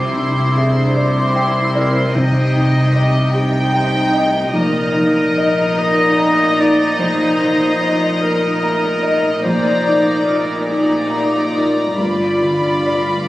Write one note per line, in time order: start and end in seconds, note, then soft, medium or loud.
0.00 2.11 C2 medium
0.00 2.11 C2 soft
0.00 2.11 C3 medium
0.00 2.13 C3 medium
0.00 2.07 C4 soft
0.00 0.93 E4 medium
0.00 3.28 F4 soft
0.00 0.58 G4 medium
0.00 2.11 C5 medium
0.00 2.48 G5 soft
0.00 0.91 C6 soft
0.17 0.80 D4 soft
0.56 2.18 D4 soft
0.56 0.97 G#4 medium
0.56 1.20 E5 soft
0.95 2.13 E4 medium
0.95 1.77 G4 medium
0.95 1.74 G4 soft
0.95 1.60 D5 soft
0.95 2.14 C6 medium
1.35 2.18 E5 soft
1.35 1.99 G5 soft
1.75 3.32 G4 soft
1.75 2.17 A#4 medium
1.75 2.15 D5 soft
2.13 4.49 C2 medium
2.13 4.56 C3 medium
2.13 4.49 C3 medium
2.13 3.33 D#4 medium
2.13 2.95 C5 medium
2.13 3.30 D#5 medium
2.13 3.30 G5 medium
2.55 4.57 G3 soft
2.55 3.18 D#4 soft
2.94 5.35 D#4 medium
2.94 3.33 G4 medium
2.94 3.58 D#5 medium
3.31 4.50 D#4 medium
3.31 4.11 G4 medium
3.31 3.97 G4 medium
3.31 4.49 G5 medium
3.31 4.52 G5 medium
3.73 7.63 C5 soft
3.73 4.37 G5 medium
4.12 4.56 G4 medium
4.12 4.53 D#5 medium
4.51 6.96 A#1 medium
4.51 9.40 A#1 medium
4.51 9.39 A#2 medium
4.51 6.99 A#2 medium
4.51 9.39 D#4 medium
4.51 5.80 A#4 loud
4.51 9.39 D#5 medium
4.51 9.40 A#5 medium
4.94 7.40 F3 medium
4.94 5.62 D#4 soft
5.36 7.81 D#4 medium
5.36 6.04 D#5 medium
5.79 6.59 A#4 medium
5.79 6.44 A#4 medium
5.79 6.61 D#5 loud
6.19 10.10 F5 medium
6.19 6.84 A#5 medium
6.59 7.24 D#4 medium
6.59 8.21 A#4 medium
6.59 6.99 D5 loud
6.99 9.39 A#1 medium
6.99 9.43 A#2 medium
6.99 8.19 C5 loud
7.41 9.47 F3 medium
7.41 8.06 D#4 soft
7.80 10.24 D#4 medium
7.80 8.46 D#5 soft
8.21 8.87 A#4 medium
8.21 9.41 A#4 medium
8.21 9.03 A#4 soft
8.63 9.28 A#5 medium
9.03 10.67 A#4 soft
9.03 9.44 D#5 medium
9.43 11.93 A#1 medium
9.43 11.94 A#1 medium
9.43 11.93 A#2 medium
9.43 12.01 A#2 medium
9.43 10.64 D#4 medium
9.43 10.27 C5 medium
9.43 10.65 D5 medium
9.43 10.65 A#5 medium
9.84 12.01 A#3 soft
9.84 10.53 D#4 soft
10.25 12.01 D#4 soft
10.25 10.68 A#4 medium
10.30 10.96 D5 soft
10.67 11.95 D#4 medium
10.67 11.37 D#4 soft
10.67 11.52 G4 medium
10.67 11.52 A#4 soft
10.67 11.95 D5 medium
10.67 11.95 A#5 medium
11.10 13.28 D5 soft
11.10 11.79 A#5 soft
11.50 11.97 D#4 soft
11.50 11.94 F4 medium
11.50 12.01 A#4 soft
11.95 13.28 G1 soft
11.95 13.28 G2 soft
11.95 13.28 F4 soft
11.95 13.26 G4 medium
11.95 13.28 D5 soft
11.95 13.28 B5 medium
12.41 13.28 D3 soft
12.41 13.12 F4 soft
12.86 13.28 F4 soft
12.86 13.28 D5 soft